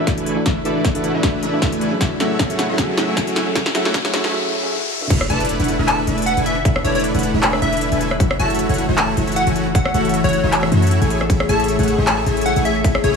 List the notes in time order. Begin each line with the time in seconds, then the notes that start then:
Already playing: E3 A3 D4 E4 A4 B4 D5 E5, riser
0.00 F#4 A4 D5 E5
0.07 E4, kick, snare, closed hi-hat
0.18 A3 D4 E4 B4 G#5, closed hi-hat
0.26 A4, closed hi-hat
0.36 E3 D4 F#4 A4 B4 E5
0.46 A3 D4 E4 B4 E5, kick, snare, closed hi-hat
0.64 E3 A3 D4 E4 F#4 A4 B4 D5 E5, closed hi-hat
0.76 B4
0.85 kick, snare, closed hi-hat
0.94 E3 A3 D4 E4 F#4 A4 B4 D5 E5 F#5, closed hi-hat
1.04 E4, closed hi-hat
1.14 A3 D4 E4 B4 E5
1.22 E3 D4 F#4 A4 E5, kick, snare, closed hi-hat
1.34 B4
1.43 A3 D4 E4 B4 E5, closed hi-hat
1.52 E3 D4 F#4 A4 D5 E5
1.62 E4, kick, snare, closed hi-hat
1.72 A3 D4 E4 B4 G#5, closed hi-hat
1.81 A4, closed hi-hat
1.91 F#3 C#4 G#4 A4 B4 E5
2.01 A3 E4 F#4 C#5 E5, kick, snare, closed hi-hat
2.19 F#3 A3 C#4 E4 F#4 G#4 A4 C#5 E5, snare, closed hi-hat
2.30 A4
2.39 kick, snare, closed hi-hat
2.49 F#3 A3 C#4 E4 F#4 G#4 A4 C#5 E5 F#5, closed hi-hat
2.59 E4, snare, closed hi-hat
2.69 A3 E4 F#4 C#5 E5
2.77 F#3 C#4 F#4 G#4 A4 E5, kick, snare, closed hi-hat
2.89 A4
2.97 A3 E4 F#4 C#5 E5, snare, closed hi-hat
3.07 F#3 C#4 A4 C#5 E5 G#5
3.17 E4, kick, snare, closed hi-hat
3.27 A3 E4 F#4 C#5 G#5, closed hi-hat
3.36 F#4, snare, closed hi-hat
3.46 F#3 C#4 G#4 A4 E5
3.55 A3 E4 F#4 C#5 E5, kick, snare, closed hi-hat
3.66 snare
3.74 F#3 A3 C#4 E4 F#4 G#4 A4 C#5 E5, snare, closed hi-hat
3.85 A4, snare
3.94 kick, snare, closed hi-hat
4.04 F#3 A3 C#4 E4 F#4 G#4 A4 C#5 E5 F#5, snare, closed hi-hat
4.14 E4, snare, closed hi-hat
4.24 A3 E4 F#4 C#5 E5, snare
4.32 F#3 C#4 G#4 A4 E5
4.62 F#3 C#4 G#4 A4 E5
5.01 E3 D4 F#4 A4 E5
5.10 E1 D3 A3 D4 E4 B4 E5, kick, closed hi-hat, crash, impact
5.21 cross-stick
5.30 E1 A3 D4 E4 A4 B4 D5 A5, closed hi-hat
5.40 B4, closed hi-hat
5.45 closed hi-hat
5.49 closed hi-hat
5.60 E1 A3 D4 E4 B4 D5 F#5, closed hi-hat
5.64 closed hi-hat
5.68 E4, closed hi-hat
5.79 E1 A3 D4 E4 B4 E5
5.88 A4 A5, clap, closed hi-hat
5.98 B4
6.07 E1 A3 D4 E4 B4 E5, closed hi-hat
6.18 D5, closed hi-hat
6.22 closed hi-hat
6.26 E4 F#5, closed hi-hat
6.37 E1 A3 D4 E4 B4 G#5, closed hi-hat
6.46 A4 E5, closed hi-hat
6.56 B4
6.65 E1 A3 D4 E4 B4 E5, kick, closed hi-hat
6.76 cross-stick
6.84 E1 A3 D4 E4 A4 B4 C#5 D5, closed hi-hat
6.95 B4 C#5, closed hi-hat
6.99 closed hi-hat
7.04 closed hi-hat
7.14 E1 A3 D4 E4 B4 D5 F#5, closed hi-hat
7.19 closed hi-hat
7.23 E4, closed hi-hat
7.34 E1 A3 D4 E4 B4 E5
7.43 A4, clap, closed hi-hat
7.53 B4, cross-stick
7.62 E1 A3 D4 E4 B4 E5, closed hi-hat
7.72 D5, closed hi-hat
7.77 closed hi-hat
7.81 E4, closed hi-hat
7.92 E1 A3 D4 E4 B4 G#5, closed hi-hat
8.01 A4, closed hi-hat
8.11 B4, cross-stick
8.20 F#1 E3 A3 E4 F#4 C#5 E5, kick, closed hi-hat
8.31 cross-stick
8.39 F#1 A3 E4 F#4 C#5 E5 A5, closed hi-hat
8.50 A4, closed hi-hat
8.55 closed hi-hat
8.59 closed hi-hat
8.69 F#1 A3 E4 F#4 C#5 F#5, closed hi-hat
8.74 closed hi-hat
8.78 E4, closed hi-hat
8.89 F#1 A3 E4 F#4 C#5 E5
8.97 F#4 A5, clap, closed hi-hat
9.08 A4
9.17 F#1 A3 E4 F#4 C#5 E5, closed hi-hat
9.27 C#5, closed hi-hat
9.32 closed hi-hat
9.36 E4 F#5, closed hi-hat
9.47 F#1 A3 E4 F#4 C#5 G#5, closed hi-hat
9.56 F#4, closed hi-hat
9.66 A4
9.75 F#1 A3 E4 F#4 C#5 E5 F#5, kick, closed hi-hat
9.85 cross-stick
9.94 F#1 A3 E4 F#4 C#5 E5, closed hi-hat
10.05 A4, closed hi-hat
10.09 closed hi-hat
10.14 closed hi-hat
10.24 F#1 A3 E4 F#4 C#5 F#5, closed hi-hat
10.29 closed hi-hat
10.33 E4, closed hi-hat
10.43 F#1 A3 E4 F#4 C#5 E5
10.52 F#4, clap, closed hi-hat
10.63 A4, cross-stick
10.72 F#2 A3 E4 F#4 C#5 E5, closed hi-hat
10.82 C#5, closed hi-hat
10.87 closed hi-hat
10.91 E4, closed hi-hat
11.01 A1 A3 E4 G#4 C#5 G#5, closed hi-hat
11.10 C#3 G#4 G#5, closed hi-hat
11.21 A4, cross-stick
11.30 A1 A3 E4 G#4 C#5 E5, kick, closed hi-hat, ride
11.40 cross-stick
11.49 A1 A3 E4 G#4 C#5 E5 A5, closed hi-hat
11.60 A4, closed hi-hat
11.64 closed hi-hat
11.68 closed hi-hat
11.79 A1 A3 E4 G#4 C#5 F#5, closed hi-hat
11.83 closed hi-hat
11.88 E4, closed hi-hat
11.98 A1 A3 E4 G#4 C#5 E5
12.07 G#4 A5, clap, closed hi-hat, ride
12.18 A4
12.26 A1 A3 E4 G#4 C#5 E5, closed hi-hat
12.37 C#5, closed hi-hat
12.41 closed hi-hat
12.46 E4 F#5, closed hi-hat
12.56 A1 A3 E4 G#4 C#5 G#5, closed hi-hat
12.65 G#4 E5, closed hi-hat
12.76 A4
12.84 A1 A3 E4 G#4 C#5 E5, kick, closed hi-hat, ride
12.95 cross-stick
13.04 A1 A3 E4 G#4 C#5 E5, closed hi-hat